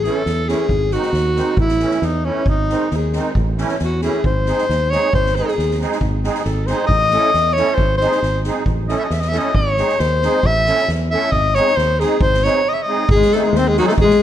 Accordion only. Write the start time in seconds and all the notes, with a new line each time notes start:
0.04 E3 A3 C#4 E4
0.48 E3 A3 C#4 E4
0.92 D#3 G#3 C4 D#4
1.35 D#3 G#3 C4 D#4
1.80 E3 A3 C#4 E4
2.25 E3 A3 C#4 E4
2.69 D#3 G#3 C4 D#4
3.13 D#3 G#3 C4 D#4
3.57 E3 A3 C#4 E4
4.02 E3 A3 C#4 E4
4.46 G#3 C4 D#4 G#4
4.92 G#3 C4 D#4 G#4
5.37 G#3 C4 D#4 G#4
5.80 G#3 C4 D#4 G#4
6.23 G#3 C4 D#4 G#4
6.67 G#3 C4 D#4 G#4
7.12 A3 C#4 E4 A4
7.56 A3 C#4 E4 A4
8.01 G#3 C4 D#4 G#4
8.45 G#3 C4 D#4 G#4
8.87 A3 C#4 E4 A4
9.32 A3 C#4 E4 A4
9.77 G#3 C4 D#4 G#4
10.23 G#3 C4 D#4 G#4
10.67 A3 C#4 E4 A4
11.12 A3 C#4 E4 A4
11.55 G#3 C4 D#4 G#4
11.99 G#3 C4 D#4 G#4
12.44 G#3 C4 D#4 G#4
12.87 G#3 C4 D#4 G#4
13.33 D#3 G#3 C4 D#4 G#4
13.76 D#3 G#3 C4 D#4 G#4